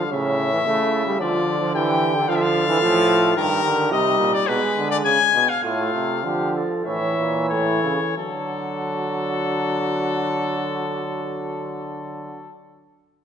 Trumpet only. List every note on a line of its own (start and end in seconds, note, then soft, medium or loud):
0.12 1.18 E5 medium
1.21 1.73 D5 medium
1.75 2.30 G5 medium
2.28 2.37 F5 medium
2.35 2.43 E5 medium
2.42 3.36 F5 loud
3.37 3.91 A#4 loud
3.92 4.35 D#5 loud
4.33 4.49 D5 loud
4.47 4.90 B4 loud
4.90 4.97 D5 loud
5.05 5.50 G#5 loud
5.49 5.63 F5 loud
5.63 6.52 F5 medium
6.85 7.46 E5 medium
7.49 8.15 C#5 medium
8.18 12.55 A4 medium